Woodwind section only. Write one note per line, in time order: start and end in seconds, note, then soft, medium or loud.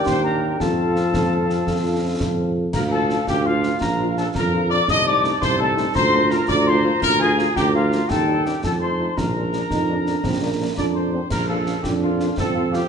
0.00 0.60 D4 medium
0.00 0.60 G5 medium
0.60 2.53 C4 medium
0.60 2.57 F5 medium
2.74 4.84 D4 medium
2.74 4.84 F5 medium
4.90 5.92 D#4 medium
4.90 5.96 A5 medium
5.95 8.09 F4 medium
5.95 8.05 A#5 medium
8.10 9.13 D#4 medium
8.10 8.60 G5 medium
8.64 9.17 A5 soft
9.17 11.13 D4 medium
9.17 11.13 A#5 soft
11.49 11.56 D4 soft
11.49 11.55 F5 soft
11.67 11.73 D4 soft
11.67 11.73 F5 soft
12.02 12.09 D4 medium
12.02 12.09 F5 soft
12.20 12.27 D4 medium
12.20 12.27 F5 soft
12.54 12.61 F4 medium
12.54 12.61 F5 medium
12.72 12.79 F4 medium
12.72 12.79 F5 medium